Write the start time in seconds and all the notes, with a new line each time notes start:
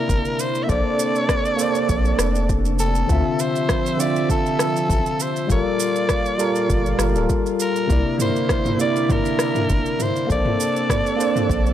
Already playing: C3 D3 A#3 E4 A#4 D5
0.09 G1, kick, shaker
0.25 shaker
0.39 C5, shaker
0.55 shaker
0.64 A#3 E5
0.68 A#1 C3 D4 A4 C5 D5, kick, shaker
0.72 D5
0.99 shaker
1.15 shaker
1.29 kick, cross-stick, shaker
1.45 shaker
1.57 A#3 A4 C5, shaker
1.62 D5
1.75 shaker
1.89 A#1, kick, shaker
2.05 shaker
2.19 F1, cross-stick, shaker
2.35 shaker
2.49 kick, shaker
2.65 shaker
2.79 A4, shaker
2.95 shaker
3.07 D2 D3 F3 C4 F4 E5, kick, shaker
3.12 E5
3.39 C5, shaker
3.56 shaker
3.69 kick, cross-stick, shaker
3.86 shaker
3.97 D3 C4 F4 D5, shaker
4.02 E5
4.16 shaker
4.30 A4, kick, shaker
4.46 shaker
4.59 cross-stick, shaker
4.76 shaker
4.89 A1, kick, shaker
5.06 shaker
5.20 C5, shaker
5.36 shaker
5.47 G1 A#2 G3 F4 A4, kick, shaker
5.52 A#4 D5
5.80 shaker
5.96 shaker
6.09 kick, cross-stick, shaker
6.26 shaker
6.38 G3 F4 A4 A#4, shaker
6.55 shaker
6.70 G1, kick, shaker
6.86 shaker
6.98 G1 G3 F4 A4 A#4, cross-stick, shaker
7.12 D1 G3 F4 A4, shaker
7.18 A#4
7.29 kick, shaker
7.46 shaker
7.60 A#4, shaker
7.76 shaker
7.87 C2 C3 D3 A#3 E4, kick, shaker
7.92 D5
8.19 C5, mid tom, shaker
8.36 shaker
8.49 kick, cross-stick, shaker
8.65 mid tom, shaker
8.77 C3 A#3 E4 D5, shaker
8.83 D5
8.96 shaker
9.09 A#4, kick, mid tom, shaker
9.25 shaker
9.39 cross-stick, shaker
9.55 mid tom, shaker
9.69 G1, kick, shaker
9.86 shaker
9.99 C5, mid tom, shaker
10.16 shaker
10.27 A#1 C3 A#3 D4 A4 C5, kick, shaker
10.32 D5
10.45 mid tom
10.60 shaker
10.76 shaker
10.90 kick, cross-stick, mid tom, shaker
11.06 shaker
11.16 A#3 A4 C5
11.20 D5, shaker
11.36 mid tom, shaker
11.49 A#1, kick, shaker
11.66 shaker